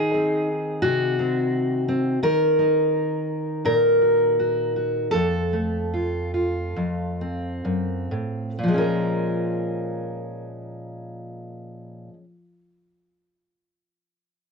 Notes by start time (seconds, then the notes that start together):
Already playing: D#3 D#4 G#4
0.14 C4
0.82 C3 F#4
1.19 C4
1.88 C4
2.23 D#3 A#4
2.59 D#4
3.65 A#2 A#4
4.02 F#4
4.40 F#4
4.76 F#4
5.11 F2 A4
5.53 A3
5.93 F4
6.34 F4
6.76 F2
7.21 C4
7.65 F#2
8.11 A2
8.58 A#2
8.63 F3
8.68 G#3
8.74 C#4
8.78 A#4